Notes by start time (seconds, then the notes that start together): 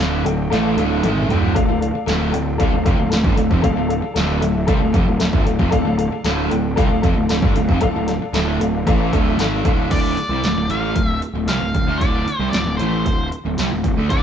0.00 D1 D2 A2 D3 A4 D5 F5, snare
0.25 D1 D2 A2 A4 D5 G5, closed hi-hat
0.50 A1 A2 E3 A3 A4 D5 F5, snare, closed hi-hat
0.77 D1 D2 A2 D3 A4 D5 F5, closed hi-hat, high tom
1.03 G#1 G#2 D#3 G#3 A4 D5 E5, closed hi-hat, mid tom
1.17 mid tom
1.29 D1 D2 A2 D3 A4 D5 G5, closed hi-hat, floor tom
1.43 floor tom
1.55 D1 D2 A2 A4 D5 F5, kick, closed hi-hat
1.68 D1 D2 A2
1.80 A4 D5 F5, closed hi-hat
1.94 muted picked electric bass stroke, muted overdriven electric guitar stroke, muted distorted electric guitar stroke
2.06 D1 D2 A2 D3 A4 D5 F5, snare, closed hi-hat, tambourine
2.32 D1 D2 A2 A4 D5 G5, closed hi-hat
2.58 C2 C3 G3 A4 D5 F5, kick, closed hi-hat
2.72 D1 D2 A2
2.84 F1 F2 C3 A4 D5 F5, kick, closed hi-hat
2.98 D1 D2 A2
3.10 D1 D2 A2 A4 D5 F5, snare, closed hi-hat, tambourine
3.24 G1 G2 D3, kick
3.36 D1 D2 A2 A4 D5 F5, closed hi-hat
3.51 F1 F2 C3, kick
3.62 D1 D2 A2 A4 D5 F5, kick, closed hi-hat
3.76 D1 D2 A2
3.88 A4 D5 F5, closed hi-hat
4.02 muted distorted electric guitar stroke, muted picked electric bass stroke, muted overdriven electric guitar stroke
4.14 D1 D2 A2 D3 A4 D5 F5, snare, closed hi-hat, tambourine
4.41 D1 D2 A2 A4 D5 E5, closed hi-hat
4.67 C2 C3 G3 A4 D5 F5, kick, closed hi-hat
4.80 D1 D2 A2
4.93 F1 F2 C3 A4 D5 F5, kick, closed hi-hat
5.06 D1 D2 A2
5.19 D1 D2 A2 A4 D5 E5, snare, closed hi-hat, tambourine
5.33 G1 G2 D3, kick
5.45 D1 D2 A2 A4 D5 F5, closed hi-hat
5.59 F1 F2 C3, kick
5.71 D1 D2 A2 A4 D5 F5, kick, closed hi-hat
5.85 D1 D2 A2
5.98 A4 D5 F5, closed hi-hat
6.12 muted picked electric bass stroke, muted distorted electric guitar stroke, muted overdriven electric guitar stroke
6.24 D1 D2 A2 D3 A4 D5 F5, snare, closed hi-hat, tambourine
6.50 D1 D2 A2 A4 D5 G5, closed hi-hat
6.76 C2 C3 G3 A4 D5 F5, kick, closed hi-hat
6.89 D1 D2 A2
7.02 F1 F2 C3 A4 D5 F5, kick, closed hi-hat
7.16 D1 D2 A2
7.29 D1 D2 A2 A4 D5 F5, snare, closed hi-hat, tambourine
7.42 G1 G2 D3, kick
7.55 D1 D2 A2 A4 D5 F5, closed hi-hat
7.69 F1 F2 C3, kick
7.81 D1 D2 A2 A4 D5 F5, kick, closed hi-hat
7.94 D1 D2 A2
8.07 A4 D5 F5, snare, closed hi-hat
8.21 muted picked electric bass stroke, muted overdriven electric guitar stroke, muted distorted electric guitar stroke
8.33 D1 D2 A2 D3 A4 D5 E5, snare, closed hi-hat, tambourine
8.60 D1 D2 A2 A4 D5 F5, closed hi-hat
8.87 A1 A2 E3 A3 A4 D5 F5, kick, closed hi-hat
9.12 D1 D2 A2 D3 A4 D5 E5, kick, closed hi-hat
9.38 G#1 G#2 D#3 G#3 A4 D5 F5, snare, closed hi-hat, tambourine
9.65 D1 D2 A2 D3 A4 D5 F5, kick, closed hi-hat
9.91 D1 D2 A2 D3 D5, kick, closed hi-hat, crash
10.17 muted distorted electric guitar stroke, muted picked electric bass stroke, muted overdriven electric guitar stroke, closed hi-hat
10.29 C2 C3 G3
10.43 D1 D2 A2, snare, closed hi-hat, tambourine
10.56 D1 D2 A2
10.69 A1 A2 E3 A3 F5, closed hi-hat
10.96 D1 D2 A2, kick, closed hi-hat
11.07 E5
11.22 closed hi-hat
11.34 D1 D2 A2
11.47 C2 C3 G3 F5, snare, closed hi-hat, tambourine
11.60 D1 D2 A2
11.75 D1 D2 A2, kick, closed hi-hat
11.87 D2 D3 A3
11.98 D1 D2 D5, kick, closed hi-hat
12.02 A2 D3
12.26 muted picked electric bass stroke, muted overdriven electric guitar stroke, muted distorted electric guitar stroke, closed hi-hat
12.39 C2 C3 G3
12.50 D1 D2 D5, snare, closed hi-hat, tambourine
12.55 A2
12.66 D1 D2 A2
12.77 A1 A2 E3 C5, closed hi-hat
12.81 A3
13.06 D1 D2 A2, kick, closed hi-hat
13.32 closed hi-hat
13.45 D1 D2 A2
13.58 C2 C3 G3, snare, closed hi-hat, tambourine
13.71 D1 D2 A2
13.84 D1 D2 A2, kick, closed hi-hat
13.97 D2 D3 A3
14.10 D1 D2 A2 D3 D5, kick, closed hi-hat